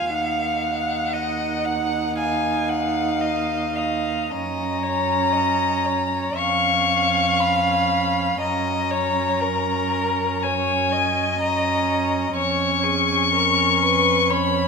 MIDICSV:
0, 0, Header, 1, 5, 480
1, 0, Start_track
1, 0, Tempo, 1041667
1, 42, Time_signature, 4, 2, 24, 8
1, 1483, Tempo, 1096892
1, 1963, Tempo, 1030928
1, 3403, Tempo, 1008403
1, 4843, Tempo, 966184
1, 6951, End_track
2, 0, Start_track
2, 0, Title_t, "Violin"
2, 0, Program_c, 0, 40
2, 48, Note_on_c, 0, 78, 68
2, 985, Note_off_c, 0, 78, 0
2, 1005, Note_on_c, 0, 77, 70
2, 1728, Note_on_c, 0, 75, 57
2, 1734, Note_off_c, 0, 77, 0
2, 1961, Note_on_c, 0, 82, 76
2, 1968, Note_off_c, 0, 75, 0
2, 2924, Note_off_c, 0, 82, 0
2, 2927, Note_on_c, 0, 85, 76
2, 3400, Note_on_c, 0, 83, 77
2, 3407, Note_off_c, 0, 85, 0
2, 3881, Note_off_c, 0, 83, 0
2, 3884, Note_on_c, 0, 82, 78
2, 4839, Note_on_c, 0, 80, 78
2, 4846, Note_off_c, 0, 82, 0
2, 5323, Note_off_c, 0, 80, 0
2, 5327, Note_on_c, 0, 82, 81
2, 5790, Note_off_c, 0, 82, 0
2, 5798, Note_on_c, 0, 85, 85
2, 6763, Note_on_c, 0, 83, 105
2, 6770, Note_off_c, 0, 85, 0
2, 6951, Note_off_c, 0, 83, 0
2, 6951, End_track
3, 0, Start_track
3, 0, Title_t, "Violin"
3, 0, Program_c, 1, 40
3, 0, Note_on_c, 1, 77, 51
3, 523, Note_on_c, 1, 75, 43
3, 530, Note_off_c, 1, 77, 0
3, 762, Note_on_c, 1, 78, 48
3, 769, Note_off_c, 1, 75, 0
3, 1001, Note_off_c, 1, 78, 0
3, 1004, Note_on_c, 1, 80, 47
3, 1242, Note_on_c, 1, 78, 52
3, 1248, Note_off_c, 1, 80, 0
3, 1480, Note_on_c, 1, 75, 50
3, 1486, Note_off_c, 1, 78, 0
3, 1719, Note_on_c, 1, 77, 49
3, 1726, Note_off_c, 1, 75, 0
3, 1961, Note_off_c, 1, 77, 0
3, 1963, Note_on_c, 1, 75, 48
3, 2203, Note_on_c, 1, 73, 46
3, 2210, Note_off_c, 1, 75, 0
3, 2434, Note_on_c, 1, 75, 44
3, 2441, Note_off_c, 1, 73, 0
3, 2680, Note_on_c, 1, 73, 51
3, 2687, Note_off_c, 1, 75, 0
3, 2921, Note_on_c, 1, 77, 61
3, 2928, Note_off_c, 1, 73, 0
3, 3874, Note_off_c, 1, 77, 0
3, 3877, Note_on_c, 1, 75, 54
3, 4116, Note_on_c, 1, 73, 59
3, 4123, Note_off_c, 1, 75, 0
3, 4355, Note_on_c, 1, 70, 55
3, 4362, Note_off_c, 1, 73, 0
3, 4845, Note_on_c, 1, 73, 57
3, 4853, Note_off_c, 1, 70, 0
3, 5085, Note_on_c, 1, 75, 66
3, 5093, Note_off_c, 1, 73, 0
3, 5798, Note_off_c, 1, 75, 0
3, 5801, Note_on_c, 1, 73, 54
3, 6035, Note_on_c, 1, 68, 53
3, 6042, Note_off_c, 1, 73, 0
3, 6280, Note_off_c, 1, 68, 0
3, 6286, Note_on_c, 1, 70, 52
3, 6525, Note_on_c, 1, 71, 59
3, 6532, Note_off_c, 1, 70, 0
3, 6760, Note_on_c, 1, 73, 57
3, 6768, Note_off_c, 1, 71, 0
3, 6951, Note_off_c, 1, 73, 0
3, 6951, End_track
4, 0, Start_track
4, 0, Title_t, "Viola"
4, 0, Program_c, 2, 41
4, 0, Note_on_c, 2, 65, 44
4, 44, Note_on_c, 2, 63, 43
4, 51, Note_off_c, 2, 65, 0
4, 1961, Note_on_c, 2, 61, 50
4, 1968, Note_off_c, 2, 63, 0
4, 2921, Note_off_c, 2, 61, 0
4, 2923, Note_on_c, 2, 61, 49
4, 3863, Note_off_c, 2, 61, 0
4, 3882, Note_on_c, 2, 61, 47
4, 5304, Note_off_c, 2, 61, 0
4, 5327, Note_on_c, 2, 61, 58
4, 5790, Note_off_c, 2, 61, 0
4, 5798, Note_on_c, 2, 61, 58
4, 6744, Note_off_c, 2, 61, 0
4, 6764, Note_on_c, 2, 61, 54
4, 6951, Note_off_c, 2, 61, 0
4, 6951, End_track
5, 0, Start_track
5, 0, Title_t, "Cello"
5, 0, Program_c, 3, 42
5, 44, Note_on_c, 3, 39, 43
5, 1963, Note_on_c, 3, 42, 43
5, 1970, Note_off_c, 3, 39, 0
5, 2928, Note_off_c, 3, 42, 0
5, 2930, Note_on_c, 3, 41, 51
5, 3866, Note_off_c, 3, 41, 0
5, 3885, Note_on_c, 3, 42, 45
5, 5780, Note_off_c, 3, 42, 0
5, 5801, Note_on_c, 3, 41, 57
5, 6951, Note_off_c, 3, 41, 0
5, 6951, End_track
0, 0, End_of_file